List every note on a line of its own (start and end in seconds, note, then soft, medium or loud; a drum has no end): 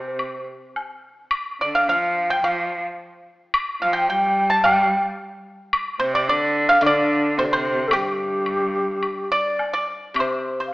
0.00 0.44 C3 medium
0.00 0.74 C3 medium
0.00 0.44 C5 medium
0.00 0.47 C5 medium
0.19 high woodblock soft
0.76 low woodblock soft
1.31 high woodblock medium
1.61 1.89 D3 medium
1.61 1.77 D5 medium
1.61 1.74 D5 medium
1.75 1.87 F5 medium
1.75 1.89 F5 medium
1.87 2.41 F3 medium
1.87 2.27 F5 medium
1.87 2.33 F5 medium
2.30 2.43 G5 medium
2.30 2.46 G5 loud
2.42 2.81 F3 medium
2.42 2.70 F5 medium
2.42 2.86 F5 medium
2.42 high woodblock soft
2.70 2.82 D5 medium
3.54 high woodblock medium
3.81 4.09 F3 medium
3.81 3.93 F5 medium
3.81 3.96 F5 medium
3.93 4.07 G5 medium
3.93 4.09 G5 medium
4.08 4.62 G3 medium
4.08 4.52 G5 medium
4.08 4.48 G5 medium
4.50 4.63 A5 medium
4.50 4.67 A5 loud
4.63 5.02 G3 medium
4.63 5.02 G5 medium
4.63 5.06 G5 medium
4.63 high woodblock soft
5.73 high woodblock medium
5.99 6.29 C3 medium
5.99 6.15 C5 loud
5.99 6.13 C5 medium
6.13 6.27 D5 medium
6.27 6.81 D3 loud
6.27 6.71 D5 loud
6.27 6.67 D5 medium
6.69 6.82 F5 medium
6.69 6.84 F5 loud
6.81 8.46 D3 medium
6.81 7.39 D3 loud
6.81 7.37 D5 loud
6.81 high woodblock medium
6.86 7.36 D5 medium
7.37 7.50 C3 medium
7.37 7.46 C5 loud
7.37 7.51 C5 medium
7.44 7.54 D5 medium
7.50 7.93 C3 medium
7.50 7.90 C5 medium
7.50 7.89 C5 loud
7.87 7.94 A4 medium
7.87 high woodblock medium
7.91 9.59 G2 medium
7.91 9.32 G4 loud
7.91 9.56 G4 medium
8.46 high woodblock medium
9.03 high woodblock medium
9.32 9.71 D5 medium
9.32 9.85 D5 loud
9.59 low woodblock medium
9.73 9.87 D5 medium
10.14 10.73 C3 soft
10.14 high woodblock medium
10.19 10.63 C5 medium
10.19 10.58 C5 medium
10.60 10.72 C5 medium
10.66 10.73 F5 medium